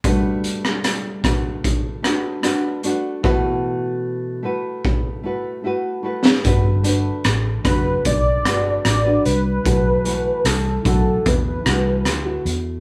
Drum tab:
HH |x-x-x-x-x-x-x-x-|----------------|x-x-x-x-x-x-x-x-|x-x-x-x-x-x-x-x-|
SD |---rr-r---r-r---|---------------o|----r-r---r-r---|----r-----r-r---|
BD |o-----o-o-------|o-------o-------|o-----o-o-------|o-----o-o-------|